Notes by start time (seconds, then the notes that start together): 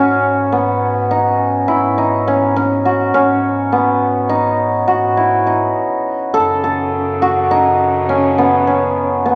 Already playing: G#2 B3 C#4 D#4 F#4
0.52 B3
1.11 D#4
1.68 G#2 E4
1.98 D#4
2.28 C#4
2.56 C#4
2.85 F#4
3.14 G#2 C#4
3.72 B3
4.29 D#4
4.88 G#2 F#4
5.17 E4
5.47 D#4
6.34 F#2 C#3 A4
6.64 A4
7.22 F#4
7.51 D#4
8.09 C#4
8.38 B3
8.67 C#4
9.26 B3